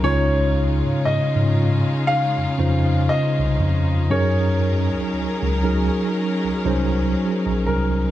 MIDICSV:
0, 0, Header, 1, 5, 480
1, 0, Start_track
1, 0, Key_signature, -5, "major"
1, 0, Tempo, 1016949
1, 20, Time_signature, 4, 2, 24, 8
1, 3828, End_track
2, 0, Start_track
2, 0, Title_t, "Grand piano"
2, 0, Program_c, 0, 0
2, 18, Note_on_c, 0, 73, 96
2, 480, Note_off_c, 0, 73, 0
2, 498, Note_on_c, 0, 75, 90
2, 978, Note_on_c, 0, 77, 101
2, 993, Note_off_c, 0, 75, 0
2, 1459, Note_on_c, 0, 75, 96
2, 1474, Note_off_c, 0, 77, 0
2, 1940, Note_on_c, 0, 73, 85
2, 1954, Note_off_c, 0, 75, 0
2, 2881, Note_off_c, 0, 73, 0
2, 3618, Note_on_c, 0, 70, 74
2, 3828, Note_off_c, 0, 70, 0
2, 3828, End_track
3, 0, Start_track
3, 0, Title_t, "Tine electric piano"
3, 0, Program_c, 1, 4
3, 0, Control_c, 1, 64, 127
3, 15, Note_on_c, 1, 49, 93
3, 17, Note_on_c, 1, 61, 79
3, 19, Note_on_c, 1, 63, 85
3, 21, Note_on_c, 1, 65, 81
3, 23, Note_on_c, 1, 73, 98
3, 27, Control_c, 1, 64, 0
3, 115, Control_c, 1, 64, 127
3, 901, Note_off_c, 1, 49, 0
3, 902, Note_off_c, 1, 61, 0
3, 902, Note_off_c, 1, 63, 0
3, 903, Note_off_c, 1, 65, 0
3, 904, Note_off_c, 1, 73, 0
3, 1217, Note_on_c, 1, 49, 70
3, 1219, Note_on_c, 1, 61, 64
3, 1220, Note_on_c, 1, 63, 66
3, 1223, Note_on_c, 1, 65, 63
3, 1224, Note_on_c, 1, 72, 77
3, 1880, Note_off_c, 1, 49, 0
3, 1882, Note_off_c, 1, 61, 0
3, 1882, Note_off_c, 1, 63, 0
3, 1884, Note_off_c, 1, 65, 0
3, 1884, Note_off_c, 1, 72, 0
3, 1936, Note_on_c, 1, 54, 90
3, 1938, Note_on_c, 1, 61, 81
3, 1940, Note_on_c, 1, 63, 76
3, 1942, Note_on_c, 1, 68, 86
3, 1945, Note_on_c, 1, 70, 100
3, 1947, Control_c, 1, 64, 0
3, 2017, Control_c, 1, 64, 127
3, 2600, Note_off_c, 1, 54, 0
3, 2601, Note_off_c, 1, 61, 0
3, 2602, Note_off_c, 1, 63, 0
3, 2603, Note_off_c, 1, 68, 0
3, 2604, Note_off_c, 1, 70, 0
3, 2657, Note_on_c, 1, 54, 77
3, 2659, Note_on_c, 1, 61, 71
3, 2661, Note_on_c, 1, 63, 73
3, 2663, Note_on_c, 1, 68, 67
3, 2664, Note_on_c, 1, 70, 84
3, 3100, Note_off_c, 1, 54, 0
3, 3101, Note_off_c, 1, 61, 0
3, 3102, Note_off_c, 1, 63, 0
3, 3103, Note_off_c, 1, 68, 0
3, 3104, Note_off_c, 1, 70, 0
3, 3137, Note_on_c, 1, 54, 78
3, 3140, Note_on_c, 1, 61, 70
3, 3141, Note_on_c, 1, 63, 69
3, 3144, Note_on_c, 1, 68, 70
3, 3145, Note_on_c, 1, 72, 84
3, 3801, Note_off_c, 1, 54, 0
3, 3802, Note_off_c, 1, 61, 0
3, 3803, Note_off_c, 1, 63, 0
3, 3804, Note_off_c, 1, 68, 0
3, 3805, Note_off_c, 1, 72, 0
3, 3828, End_track
4, 0, Start_track
4, 0, Title_t, "String section"
4, 0, Program_c, 2, 48
4, 0, Note_on_c, 2, 63, 65
4, 21, Note_on_c, 2, 49, 70
4, 21, Note_on_c, 2, 56, 65
4, 21, Note_on_c, 2, 61, 66
4, 21, Note_on_c, 2, 65, 78
4, 1921, Note_off_c, 2, 65, 0
4, 1922, Note_off_c, 2, 49, 0
4, 1922, Note_off_c, 2, 56, 0
4, 1922, Note_off_c, 2, 61, 0
4, 1938, Note_on_c, 2, 54, 71
4, 1939, Note_on_c, 2, 68, 70
4, 1940, Note_on_c, 2, 61, 65
4, 1940, Note_on_c, 2, 70, 79
4, 3828, Note_off_c, 2, 54, 0
4, 3828, Note_off_c, 2, 61, 0
4, 3828, Note_off_c, 2, 63, 0
4, 3828, Note_off_c, 2, 68, 0
4, 3828, Note_off_c, 2, 70, 0
4, 3828, End_track
5, 0, Start_track
5, 0, Title_t, "Tine electric piano"
5, 0, Program_c, 3, 4
5, 22, Note_on_c, 3, 37, 101
5, 381, Note_off_c, 3, 37, 0
5, 401, Note_on_c, 3, 44, 46
5, 441, Note_off_c, 3, 44, 0
5, 502, Note_on_c, 3, 44, 46
5, 557, Note_off_c, 3, 44, 0
5, 641, Note_on_c, 3, 44, 83
5, 861, Note_off_c, 3, 44, 0
5, 1121, Note_on_c, 3, 41, 44
5, 1161, Note_off_c, 3, 41, 0
5, 1221, Note_on_c, 3, 41, 76
5, 1442, Note_off_c, 3, 41, 0
5, 1601, Note_on_c, 3, 36, 78
5, 1692, Note_off_c, 3, 36, 0
5, 1701, Note_on_c, 3, 41, 88
5, 1922, Note_off_c, 3, 41, 0
5, 1942, Note_on_c, 3, 42, 100
5, 2301, Note_off_c, 3, 42, 0
5, 2321, Note_on_c, 3, 37, 44
5, 2361, Note_off_c, 3, 37, 0
5, 2422, Note_on_c, 3, 37, 45
5, 2477, Note_off_c, 3, 37, 0
5, 2561, Note_on_c, 3, 37, 87
5, 2781, Note_off_c, 3, 37, 0
5, 3042, Note_on_c, 3, 36, 44
5, 3081, Note_off_c, 3, 36, 0
5, 3143, Note_on_c, 3, 36, 82
5, 3363, Note_off_c, 3, 36, 0
5, 3522, Note_on_c, 3, 34, 75
5, 3612, Note_off_c, 3, 34, 0
5, 3622, Note_on_c, 3, 36, 78
5, 3828, Note_off_c, 3, 36, 0
5, 3828, End_track
0, 0, End_of_file